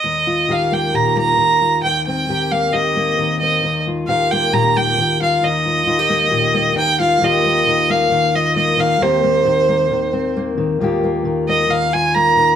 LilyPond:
<<
  \new Staff \with { instrumentName = "Fiddle" } { \time 4/4 \key ees \major \tempo 4 = 134 ees''4 f''8 g''8 bes''8 bes''4. | g''8 g''4 f''8 ees''4. ees''8~ | ees''8 r8 f''8 g''8 bes''8 g''4 f''8 | ees''2. g''8 f''8 |
ees''4. f''4 ees''8 ees''8 f''8 | c''2. r4 | r4. ees''8 f''8 aes''8 bes''4 | }
  \new Staff \with { instrumentName = "Steel-string acoustic guitar" } { \time 4/4 \key ees \major << { r8 f'8 g'8 bes8 g'8 bes4 f'8 | r8 c'8 g'8 bes8 g'8 bes4 c'8 | r8 f'8 g'8 bes8 g'8 bes4 f'8 | r8 f'8 f'16 g'16 bes8 g'8 bes4 f'8 |
<ees bes f' g'>8 bes4 bes4 f'8 bes4 | <ees bes c' g'>8 bes4 bes4 c'8 bes4 | <ees bes f' g'>8 bes4 bes4 f'8 bes4 | } \\ { ees,4 ees4 bes,4 ees4 | ees,4 ees4 ees,4 ees4 | ees,4 ees4 bes,4 ees4 | ees,4 ees4 bes,4 ees4 |
ees,4 ees4 ees4. ees8 | ees,4 ees4 ees4. ees8 | ees,4 ees4 ees4. ees8 | } >> }
>>